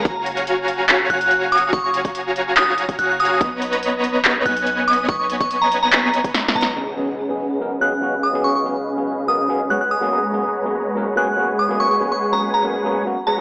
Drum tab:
HH |x-----------x-----x-----x-----------x-----------x-----------x-----x-----x-----------x--x--------|x-----------x-----x-----x-----------x-----------x-----------x-----x-----x-----------x--x--------|x-----------x-----x-----x-----------x-----------x-----------x-----x-----x-----------x--x--------|x-----------x-----x-----x-----------x-----------x-----------x-----x-----x-----------x--x--------|
CP |------------------------------------------------x-----------------------------------------------|------------------------------------------------x-----------------------------------------------|------------------------------------------------x-----------------------------------------------|------------------------------------------------x-----------------------------------------------|
SD |------------------------------------------------------------------------------------------------|------------------------------------------------------------------------------------------------|------------------------------------------------------------------------------------------------|------------------------------------------------------------------------o-------o-------o-------|
BD |o-----------------------------------------------------------------------------------------------|o-----------------o-----------------------------------------------o-----------------------------|o-----------------------------------------------------------------------------------------------|o-----------------o-----------------------------------------------o-----------------------------|

HH |------------------------------------------------------------------------------------------------|------------------------------------------------------------------------------------------------|------------------------------------------------------------------------------------------------|------------------------------------------------------------------------------------------------|
CP |------------------------------------------------------------------------------------------------|------------------------------------------------------------------------------------------------|------------------------------------------------------------------------------------------------|------------------------------------------------------------------------------------------------|
SD |------------------------------------------------------------------------------------------------|------------------------------------------------------------------------------------------------|------------------------------------------------------------------------------------------------|------------------------------------------------------------------------------------------------|
BD |------------------------------------------------------------------------------------------------|------------------------------------------------------------------------------------------------|------------------------------------------------------------------------------------------------|------------------------------------------------------------------------------------------------|